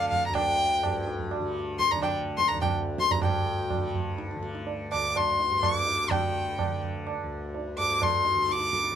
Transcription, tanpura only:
0.00 0.29 D2 medium
0.00 0.85 G2 medium
0.00 1.40 D3 medium
0.29 2.53 D2 medium
0.85 3.10 G2 medium
1.40 1.98 D3 medium
1.98 3.78 D3 medium
2.54 4.93 D2 medium
3.10 3.24 G2 medium
3.24 5.50 G2 medium
3.78 4.36 D3 medium
4.36 6.09 D3 medium
4.93 7.23 D2 medium
5.50 7.78 G2 medium
6.09 6.66 D3 medium
6.66 8.35 D3 medium
7.23 8.95 D2 medium
7.79 8.95 G2 medium
8.35 8.91 D3 medium
8.91 8.95 D3 medium

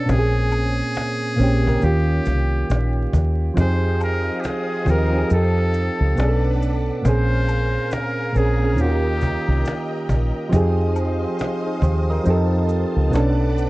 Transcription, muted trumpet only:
0.00 0.12 A4 loud
0.10 1.85 G#4 loud
1.84 3.14 G4 loud
3.60 3.99 C5 loud
4.03 4.42 A#4 loud
4.40 4.48 G4 medium
4.46 4.91 G#4 medium
4.90 5.32 A#4 medium
5.33 6.58 A4 medium
7.06 7.94 C5 loud
7.93 8.38 A#4 medium
8.37 8.82 G#4 medium
8.81 10.10 G4 loud

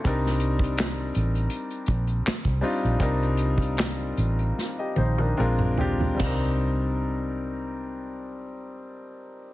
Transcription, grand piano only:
0.04 1.40 G3 medium
0.04 1.40 C4 medium
0.04 1.41 D4 medium
0.04 1.41 D#4 medium
0.04 1.42 A#4 medium
2.61 2.97 G3 medium
2.61 2.97 C4 medium
2.61 2.97 D4 medium
2.61 2.98 D#4 medium
2.61 2.98 F4 medium
2.99 4.44 G3 medium
2.99 4.45 C4 medium
2.99 4.45 D4 medium
2.99 4.46 D#4 medium
2.99 4.46 A#4 medium
4.79 4.96 G4 soft
4.79 4.96 D#5 soft
4.98 5.18 D#4 soft
4.98 5.18 C5 medium
5.20 5.37 D4 soft
5.20 5.38 A#4 medium
5.37 5.75 G#3 medium
5.37 5.76 C4 medium
5.37 5.76 D4 medium
5.37 5.76 F4 medium
5.37 5.77 A#4 medium
5.78 6.17 G#3 medium
5.78 6.16 C4 medium
5.78 6.18 D4 medium
5.78 6.18 F4 medium
5.78 6.19 G4 medium
6.15 9.37 G3 medium
6.15 9.39 C4 medium
6.21 9.43 D4 medium
6.21 9.46 D#4 medium
6.27 9.49 A#4 medium

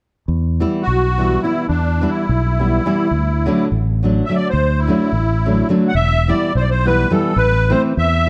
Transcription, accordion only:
0.82 1.42 F#4 medium
1.42 1.66 E4 medium
1.68 2.10 D4 medium
2.08 3.66 E4 medium
4.25 4.36 E5 medium
4.36 4.48 D5 medium
4.50 4.80 C5 medium
4.79 5.68 E4 medium
5.88 5.95 F#5 medium
5.95 6.30 E5 loud
6.28 6.53 D5 medium
6.56 6.64 C5 medium
6.62 6.70 D5 medium
6.70 6.86 C5 medium
6.86 7.12 B4 loud
7.11 7.37 A4 medium
7.37 7.71 B4 loud
7.70 7.82 C5 medium
7.98 8.29 E5 loud

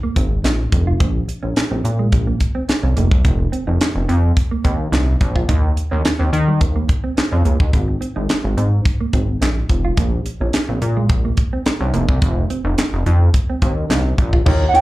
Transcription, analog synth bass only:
0.16 0.40 G#1 medium
0.44 0.67 A#1 medium
0.72 0.96 F1 loud
1.00 1.24 A#1 medium
1.43 1.54 A#1 medium
1.71 1.82 A#1 medium
1.85 2.08 A#2 medium
2.12 2.36 A#1 medium
2.83 2.94 C2 medium
2.97 3.09 F1 loud
3.11 3.22 C2 medium
3.25 3.48 F1 loud
3.67 3.78 F1 medium
3.95 4.06 F1 medium
4.09 4.32 F2 loud
4.65 4.88 D#2 medium
4.92 5.16 C2 medium
5.21 5.44 A#1 loud
5.49 5.72 D#2 loud
5.92 6.03 D#2 medium
6.20 6.31 D#2 medium
6.33 6.62 D#3 loud
6.61 6.84 D#2 medium
7.32 7.43 F2 medium
7.45 7.58 C#2 medium
7.60 7.71 D#2 medium
7.73 7.97 G#1 loud
8.16 8.27 G#1 medium
8.44 8.55 G#1 medium
8.57 8.81 G#2 medium
9.13 9.37 G#1 medium
9.41 9.65 A#1 medium
9.69 9.93 F1 medium
9.97 10.21 A#1 loud
10.41 10.52 A#1 medium
10.68 10.79 A#1 medium
10.82 11.05 A#2 medium
11.10 11.33 A#1 medium
11.80 11.92 C2 medium
11.93 12.06 F1 loud
12.09 12.20 C2 medium
12.22 12.45 F1 loud
12.65 12.76 F1 loud
12.93 13.04 F1 medium
13.06 13.29 F2 loud
13.62 13.85 D#2 medium
13.90 14.13 C2 medium
14.18 14.42 A#1 loud
14.46 14.70 D#2 medium

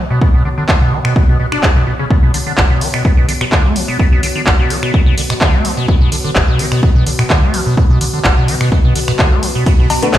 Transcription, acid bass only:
0.10 0.20 B2 medium
0.21 0.28 B2 medium
0.34 0.43 B2 medium
0.45 0.49 D3 medium
0.58 0.64 D3 medium
0.69 0.73 D3 medium
0.81 0.94 B2 medium
0.92 0.99 E3 medium
1.05 1.14 B2 medium
1.16 1.23 B2 medium
1.28 1.38 B2 medium
1.40 1.46 B2 medium
1.52 1.65 D4 loud
1.63 1.67 B2 medium
1.76 1.85 B2 medium
1.87 1.94 B2 medium
1.99 2.05 C#3 medium
2.10 2.17 B2 medium
2.23 2.32 B2 medium
2.34 2.38 D3 medium
2.46 2.53 D3 medium
2.58 2.62 B1 loud
2.70 2.83 B2 medium
2.81 2.88 E3 medium
2.94 3.03 B2 medium
3.05 3.12 B2 medium
3.17 3.27 B2 medium
3.28 3.33 D3 medium
3.41 3.45 B2 loud
3.52 3.66 D3 medium
3.65 3.77 A3 medium
3.76 3.83 E3 medium
3.88 3.97 B2 medium
3.99 4.06 B2 medium
4.12 4.21 B2 medium
4.23 4.27 D3 medium
4.36 4.42 D3 medium
4.47 4.51 B1 medium
4.59 4.72 B2 medium
4.70 4.77 E3 medium
4.83 4.92 B2 medium
4.94 5.01 B2 medium
5.06 5.16 B2 medium
5.18 5.22 D3 medium
5.30 5.34 B2 loud
5.41 5.55 D3 medium
5.54 5.66 A3 medium
5.65 5.72 E3 medium
5.77 5.86 B2 medium
5.88 5.95 B2 medium
6.01 6.10 B2 medium
6.12 6.16 D3 medium
6.24 6.31 D3 medium
6.35 6.40 B1 loud
6.48 6.61 B2 medium
6.59 6.66 E3 medium
6.72 6.81 B2 medium
6.83 6.90 B2 medium
6.95 7.05 B2 medium
7.06 7.11 D3 medium
7.19 7.23 B2 loud
7.30 7.44 D3 medium
7.43 7.55 A3 medium
7.54 7.61 E3 medium
7.66 7.75 B2 medium
7.77 7.84 B2 medium
7.90 7.99 B2 medium
8.01 8.05 D3 medium
8.13 8.20 D3 medium
8.25 8.29 B1 loud
8.37 8.50 B2 medium
8.48 8.55 E3 medium
8.61 8.70 B2 medium
8.72 8.79 B2 medium
8.84 8.94 B2 medium
8.96 9.00 D3 medium
9.08 9.12 B2 loud
9.19 9.33 D3 medium
9.32 9.44 A3 medium
9.43 9.50 E3 medium
9.55 9.64 B2 medium
9.66 9.73 B2 medium
9.79 9.88 B2 medium
9.90 9.94 D3 medium
10.03 10.09 D3 medium
10.14 10.18 B1 loud

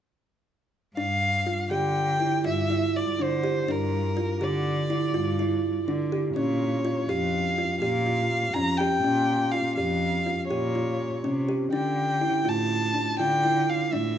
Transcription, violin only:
0.97 1.67 F5 medium
1.72 2.41 G5 medium
2.47 2.98 E5 medium
2.96 3.24 D5 medium
3.23 3.72 C5 medium
3.71 4.45 A#4 medium
4.43 5.88 D5 medium
6.36 7.10 C#5 medium
7.09 7.80 F5 medium
7.80 8.55 F5 medium
8.54 8.79 A#5 medium
8.77 9.53 G5 medium
9.51 9.75 F5 medium
9.76 10.46 F5 medium
10.48 11.43 C#5 medium
11.72 12.50 G5 medium
12.48 13.18 A5 medium
13.19 13.71 G5 medium
13.70 13.93 F5 medium
13.92 14.18 E5 medium

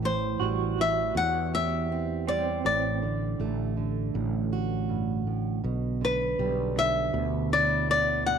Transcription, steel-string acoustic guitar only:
0.00 1.15 A2 medium
0.00 0.77 E3 medium
0.00 0.41 G3 soft
0.42 2.28 G3 soft
0.78 2.61 E3 medium
1.16 2.65 E2 medium
1.54 2.61 G4 medium
1.92 2.61 C4 medium
2.29 2.66 G3 medium
2.65 3.02 A2 medium
3.02 3.76 D3 medium
3.41 5.61 A3 soft
3.77 6.00 D3 medium
4.14 5.26 A2 medium
4.53 5.60 F#4 medium
4.89 5.27 G2 medium
5.27 5.63 A2 medium
5.64 6.02 B2 medium
6.01 6.75 D3 medium
6.40 8.27 G3 medium
6.76 8.38 D3 medium
7.13 8.38 B2 medium
7.53 8.38 E4 medium
7.90 8.38 B3 medium
8.28 8.38 G3 medium

